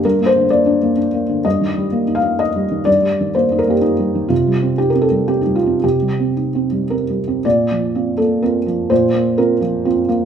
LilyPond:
<<
  \new Staff \with { instrumentName = "Felt piano" } { \time 3/4 \key bes \major \tempo 4 = 126 bes'8 c''8 d''4 r4 | ees''4. f''8 ees''4 | d''4 c''8 bes'16 g'16 ees'4 | f'4 g'16 bes'16 a'8 g'16 ees'16 f'8 |
g'2 bes'4 | d''4. a'8 bes'4 | c''4 bes'4 r4 | }
  \new Staff \with { instrumentName = "Felt piano" } { \time 3/4 \key bes \major \tuplet 3/2 { <g, d>8 bes8 d8 bes8 d'8 bes8 d'8 bes8 d8 } | \tuplet 3/2 { g,8 ees8 g8 bes8 ees'8 bes8 ees'8 g8 ees8 } | \tuplet 3/2 { g,8 g8 ees8 bes8 ees'8 bes8~ bes8 g8 ees8 } | \tuplet 3/2 { c8 g8 c'8 ees'8 c'8 g8 c'8 g8 c'8 } |
\tuplet 3/2 { c8 g8 c'8 ees'8 c'8 g8 c'8 g8 c'8 } | bes,8 f8 <c' f'>8 bes8 <c' f'>8 f8 | bes,8 bes8 <c' f'>8 f8 <c' f'>8 bes8 | }
>>